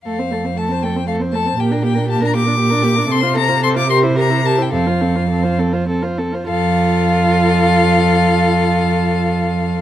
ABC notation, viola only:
X:1
M:6/8
L:1/16
Q:3/8=72
K:F
V:1 name="Viola"
A, C A, C A, C A, C A, C A, C | B, D B, D B, D B, D B, D B, D | C F C F C F G E G E G E | C F C F C F C F C F C F |
F12- | F12 |]